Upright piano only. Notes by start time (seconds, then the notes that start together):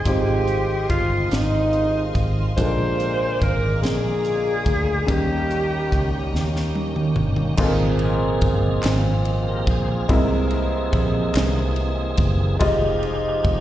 0.05 C3 G3 D#4 F4 C5
0.11 G#3
2.57 A#2 G#3 D4 F4 A4
2.65 A#4
5.06 D#3 G3 C#4 D#4 A#4
7.57 A#2 G#3 C4 F4 A4
7.67 A#4
10.09 C3 G#3 C4 E4 A#4
12.59 G#3 F4 G4 D#5